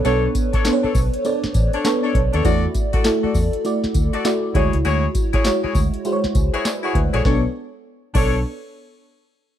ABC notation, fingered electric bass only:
X:1
M:4/4
L:1/16
Q:"Swing 16ths" 1/4=100
K:Bdor
V:1 name="Fingered electric bass" clef=bass
B,,,2 z4 B,,, z3 A,,, z3 B,,, ^D,, | E,,2 z4 E,, z3 D,, z3 D,, C,, | D,,2 z4 D,, z3 C,, z3 D,, ^A,,, | B,,, z4 z B,,,2 z8 |]